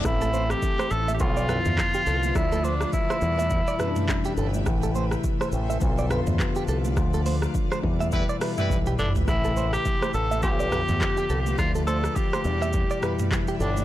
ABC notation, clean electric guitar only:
X:1
M:4/4
L:1/16
Q:"Swing 16ths" 1/4=104
K:Am
V:1 name="Clean electric guitar"
z A c z2 c z e z d B z2 G A z | z A c z2 c z e z d B z2 G A z | z A c z2 c z e z d B z2 G A z | z A c z2 c z e z d B z2 G A z |
z A c z2 c z e z d B z2 G A z | z A c z2 c z e z d B z2 G A z |]